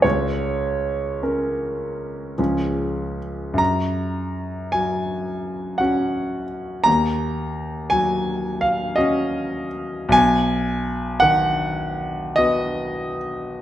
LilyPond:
<<
  \new Staff \with { instrumentName = "Grand piano" } { \time 9/8 \key fis \major \tempo 4. = 53 cis''1 r8 | ais''4. gis''4. fis''4. | ais''4. gis''4 eis''8 dis''4. | gis''4. fis''4. dis''4. | }
  \new Staff \with { instrumentName = "Grand piano" } { \time 9/8 \key fis \major cis,4. <cis' ais'>4. <cis, eis cis' gis'>4. | fis,4. fis4. <cis' fis'>4. | dis,4. fis4. <cis' fis'>4. | b,,4. dis4. <b fis'>4. | }
>>